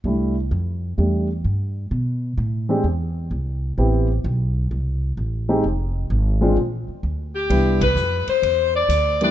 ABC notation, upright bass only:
X:1
M:4/4
L:1/8
Q:"Swing" 1/4=129
K:C
V:1 name="Upright bass" clef=bass
C,,2 F,,2 E,,2 G,,2 | B,,2 A,,2 E,,2 C,,2 | A,,,2 B,,,2 C,,2 A,,,2 | F,,,2 _A,,,2 _B,,, z D,,2 |
C,,2 F,, z E,,2 D,,2 |]